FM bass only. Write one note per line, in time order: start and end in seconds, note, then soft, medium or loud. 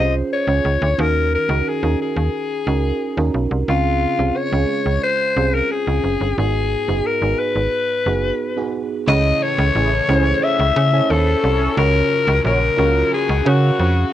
0.00 0.23 C2 medium
0.47 0.60 C#2 medium
0.65 0.77 C#2 medium
0.82 0.94 D2 loud
0.98 1.36 D#2 loud
1.49 1.62 C#2 loud
1.83 1.95 D#2 medium
2.16 2.29 D#2 medium
2.67 2.92 C#2 medium
3.17 3.30 D#2 medium
3.34 3.47 B1 medium
3.51 3.64 C2 medium
3.68 4.06 C#2 loud
4.19 4.32 C2 medium
4.52 4.65 C#2 medium
4.86 4.99 C#2 medium
5.37 5.62 C2 medium
5.87 6.00 C#2 medium
6.04 6.17 F#1 medium
6.21 6.33 G1 medium
6.38 6.76 G#1 loud
6.88 7.01 F#1 medium
7.22 7.35 G#1 medium
7.55 7.68 G#1 medium
8.06 8.32 F#1 medium
9.08 9.33 C#2 loud
9.58 9.71 C#2 loud
9.75 10.01 A1 medium
10.09 10.34 C#2 loud
10.59 10.72 C#2 loud
10.76 11.02 C#3 loud
11.10 11.35 D#2 medium
11.44 11.69 C2 medium
11.77 12.03 C#2 loud
12.27 12.40 C#2 loud
12.45 12.70 A#1 loud
12.78 13.04 C#2 medium
13.29 13.42 C#2 loud
13.46 13.71 C#3 loud
13.80 14.05 F2 medium